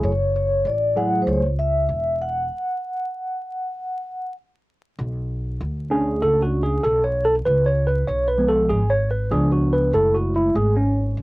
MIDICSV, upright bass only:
0, 0, Header, 1, 2, 480
1, 0, Start_track
1, 0, Key_signature, 3, "minor"
1, 0, Tempo, 618557
1, 26, Time_signature, 4, 2, 24, 8
1, 8707, End_track
2, 0, Start_track
2, 0, Title_t, "Upright bass"
2, 0, Program_c, 0, 32
2, 25, Note_on_c, 0, 30, 104
2, 481, Note_off_c, 0, 30, 0
2, 504, Note_on_c, 0, 33, 94
2, 961, Note_off_c, 0, 33, 0
2, 984, Note_on_c, 0, 37, 103
2, 1441, Note_off_c, 0, 37, 0
2, 1465, Note_on_c, 0, 28, 90
2, 1921, Note_off_c, 0, 28, 0
2, 3868, Note_on_c, 0, 35, 102
2, 4323, Note_off_c, 0, 35, 0
2, 4350, Note_on_c, 0, 38, 93
2, 4804, Note_off_c, 0, 38, 0
2, 4828, Note_on_c, 0, 37, 91
2, 5283, Note_off_c, 0, 37, 0
2, 5307, Note_on_c, 0, 35, 100
2, 5762, Note_off_c, 0, 35, 0
2, 5789, Note_on_c, 0, 37, 101
2, 6244, Note_off_c, 0, 37, 0
2, 6271, Note_on_c, 0, 35, 95
2, 6724, Note_off_c, 0, 35, 0
2, 6749, Note_on_c, 0, 32, 94
2, 7203, Note_off_c, 0, 32, 0
2, 7226, Note_on_c, 0, 37, 100
2, 7682, Note_off_c, 0, 37, 0
2, 7707, Note_on_c, 0, 30, 101
2, 8162, Note_off_c, 0, 30, 0
2, 8187, Note_on_c, 0, 32, 100
2, 8643, Note_off_c, 0, 32, 0
2, 8669, Note_on_c, 0, 35, 93
2, 8707, Note_off_c, 0, 35, 0
2, 8707, End_track
0, 0, End_of_file